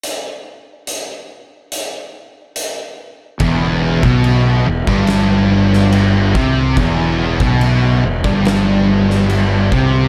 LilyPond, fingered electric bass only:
\new Staff \with { instrumentName = "Fingered electric bass" } { \clef bass \time 4/4 \key e \minor \tempo 4 = 71 r1 | e,,8. b,,8. e,,16 g,,4.~ g,,16 c,8 | e,,8. b,,8. e,,16 g,,4.~ g,,16 c,8 | }